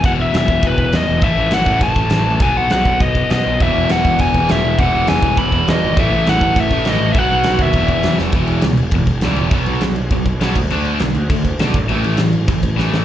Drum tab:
CC |x-x-x-x-|x-x-x-x-|x-x-x-x-|x-x-x-x-|
SD |--o---o-|--o---o-|--o---o-|--o---o-|
BD |o--ooo--|o--ooo--|o--ooo--|o--ooo--|

CC |x-x-x-x-|x-x-x-x-|x-x-x-x-|xxxxxxxx|
SD |--o---o-|--o---o-|--o---oo|--o---o-|
BD |o--ooo--|o--ooo--|o--ooo--|o---oo--|

CC |xxxxxxxx|xxxxxxxx|xxxxxx--|
SD |--o---o-|--o---o-|--o---oo|
BD |o---oo-o|----oo-o|----oo--|